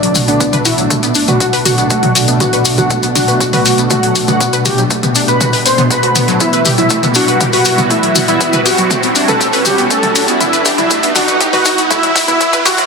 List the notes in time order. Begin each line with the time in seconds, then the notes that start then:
Already playing: B2 A3 D4 D5, riser
0.03 F#3, closed hi-hat
0.15 F#4, open hi-hat, mid tom, maracas
0.28 B3 D4 D5, closed hi-hat, maracas
0.40 B3, kick, closed hi-hat, maracas
0.53 B4, closed hi-hat, mid tom, maracas
0.65 E4 F#4 E5, open hi-hat, maracas
0.78 F#3, closed hi-hat, maracas
0.90 A3, kick, closed hi-hat, mid tom, maracas
1.03 B3, closed hi-hat, maracas
1.15 D4, open hi-hat, maracas
1.28 F#4 B4 F#5, closed hi-hat, mid tom, maracas
1.40 F#4, kick, closed hi-hat, maracas
1.53 B4, open hi-hat, maracas
1.65 F#4 F#5, open hi-hat, mid tom, maracas
1.78 B3, closed hi-hat, maracas
1.90 A3 F#4 F#5, kick, closed hi-hat, maracas
2.03 F#3, closed hi-hat, mid tom
2.15 F#4, open hi-hat, maracas
2.28 B3, closed hi-hat, maracas
2.40 B3 F#4 F#5, kick, closed hi-hat, mid tom, maracas
2.53 B4, closed hi-hat, maracas
2.65 F#4, open hi-hat, maracas
2.78 F#3 F#4 F#5, closed hi-hat, mid tom, maracas
2.90 A3, kick, closed hi-hat, maracas
3.03 B3, closed hi-hat, maracas
3.15 D4 F#4 F#5, open hi-hat, mid tom, maracas
3.28 B4, closed hi-hat, maracas
3.40 F#4, kick, closed hi-hat, maracas
3.53 F#4 B4 F#5, open hi-hat, mid tom, maracas
3.65 F#4, open hi-hat, maracas
3.78 B3, closed hi-hat, maracas
3.90 A3 F#4 F#5, kick, closed hi-hat, mid tom, maracas
4.03 F#3, closed hi-hat
4.15 F#4, open hi-hat, maracas
4.28 B3 F#4 F#5, closed hi-hat, mid tom, maracas
4.40 B3, kick, closed hi-hat, maracas
4.53 B4, closed hi-hat, maracas
4.65 F#4 G4 G5, open hi-hat, mid tom, maracas
4.78 F#3, closed hi-hat, maracas
4.90 A3, kick, closed hi-hat, maracas
5.03 B3, closed hi-hat, mid tom, maracas
5.15 D4, open hi-hat, maracas
5.28 B4 B5, closed hi-hat, maracas
5.40 F#4, kick, closed hi-hat, mid tom, maracas
5.53 B4, open hi-hat, maracas
5.65 B4 C5 C6, open hi-hat, maracas
5.78 B3, closed hi-hat, mid tom, maracas
5.90 F#4 B4 B5, kick, closed hi-hat, maracas
6.03 F#4, closed hi-hat
6.15 B3, open hi-hat, mid tom, maracas
6.28 F#3, closed hi-hat, maracas
6.40 G3 B3 E4 F#4 E5, kick, closed hi-hat, maracas
6.53 B4, closed hi-hat, maracas
6.65 G4, open hi-hat, mid tom, maracas
6.78 F#3 E4 E5, closed hi-hat, maracas
6.90 A3, kick, closed hi-hat, maracas
7.03 B3, closed hi-hat, mid tom, maracas
7.15 D4 F#4 F#5, open hi-hat, maracas
7.28 B4, closed hi-hat, maracas
7.41 G4, kick, closed hi-hat, mid tom, maracas
7.53 F#4 B4 F#5, open hi-hat, maracas
7.65 F#4, open hi-hat, maracas
7.78 B3, closed hi-hat, mid tom, maracas
7.90 A3 E4 E5, kick, closed hi-hat, maracas
8.03 F#3, closed hi-hat
8.15 F#4, open hi-hat, mid tom, maracas
8.28 B3 E4 E5, closed hi-hat, maracas
8.41 B3, kick, closed hi-hat, maracas
8.53 B4, closed hi-hat, mid tom, maracas
8.65 F#4 G4 F#5, open hi-hat, maracas
8.77 F#3, closed hi-hat, maracas
8.90 A3, kick, closed hi-hat, mid tom, maracas
9.03 B3, closed hi-hat, maracas
9.15 D4, open hi-hat, maracas
9.28 A4 B4 A5, closed hi-hat, mid tom, maracas
9.40 G4, kick, closed hi-hat, maracas
9.53 B4, open hi-hat, maracas
9.65 F#4 G4 G5, open hi-hat, mid tom, maracas
9.78 B3, closed hi-hat, maracas
9.90 A3 A4 A5, kick, closed hi-hat, maracas
10.03 F#3, closed hi-hat, mid tom
10.15 F#4, open hi-hat, maracas
10.28 B3, closed hi-hat, maracas
10.40 B3 E4 E5, kick, closed hi-hat, mid tom, maracas
10.53 B4, closed hi-hat, maracas
10.65 G4, kick, open hi-hat, maracas
10.78 F#3 E4 E5, closed hi-hat, mid tom, maracas
10.90 A3, kick, closed hi-hat, maracas
11.03 B3, closed hi-hat, maracas
11.15 D4 F#4 F#5, kick, open hi-hat, mid tom, maracas
11.28 B4, closed hi-hat, maracas
11.41 G4, kick, closed hi-hat, maracas
11.53 F#4 B4 F#5, open hi-hat, mid tom, maracas
11.65 F#4, kick, open hi-hat, maracas
11.78 B3, closed hi-hat, maracas
11.90 A3 E4 E5, kick, closed hi-hat, mid tom, maracas
12.03 F#3, closed hi-hat
12.15 F#4, kick, open hi-hat, maracas
12.28 B3 E4 E5, closed hi-hat, mid tom, maracas
12.40 B3, kick, closed hi-hat, maracas
12.53 B4, kick, closed hi-hat, maracas
12.65 F#4 G4 F#5, kick, open hi-hat, mid tom, maracas
12.77 F#3, kick, closed hi-hat, maracas